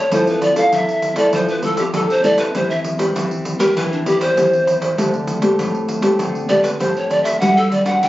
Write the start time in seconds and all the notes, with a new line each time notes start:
Already playing: C#5
0.11 F3 C4 E4 A4 C5, pandeiro
0.27 B4, pandeiro
0.42 D5, pandeiro
0.55 C4 E4 A4 F5, pandeiro
0.72 C3 E5, pandeiro
0.89 pandeiro
1.02 pandeiro
1.16 C4 E4 A4 D5, pandeiro
1.33 F3 C5, pandeiro
1.48 B4, pandeiro
1.62 C4 E4 A4, pandeiro
1.77 G4, pandeiro
1.94 C3 C4 E4 A4, pandeiro
2.10 C5, pandeiro
2.24 C4 E4 A4 D5, pandeiro
2.38 B4, pandeiro
2.55 E3 C4 G4 B4 C5, pandeiro
2.70 E5, pandeiro
2.84 pandeiro
2.99 C4 G4 B4, pandeiro
3.15 E3, pandeiro
3.31 pandeiro
3.45 pandeiro
3.59 C4 G4 A#4 B4, pandeiro
3.76 E3 B4, pandeiro
3.92 D4, pandeiro
4.06 C4 G4 B4, pandeiro
4.21 C5, pandeiro
4.37 E3 C4 G4, pandeiro
4.53 pandeiro
4.67 pandeiro
4.82 pandeiro
4.98 D3 A3 C4 G4, pandeiro
5.13 pandeiro
5.27 pandeiro
5.42 A3 C4 G4, pandeiro
5.59 A2, pandeiro
5.74 pandeiro
5.89 pandeiro
6.02 A3 C4 G4, pandeiro
6.19 D3, pandeiro
6.35 pandeiro
6.49 A3 C4 G4 D5, pandeiro
6.63 B4, pandeiro
6.79 A2 A3 C4 G4 C5, pandeiro
6.96 C#5, pandeiro
7.09 D5, pandeiro
7.23 E5, pandeiro
7.40 G3 D4 F#4 B4 F#5, pandeiro
7.57 A4, pandeiro
7.71 D5, pandeiro
7.85 D4 F#4 B4 F#5, pandeiro
8.01 D3 G5, pandeiro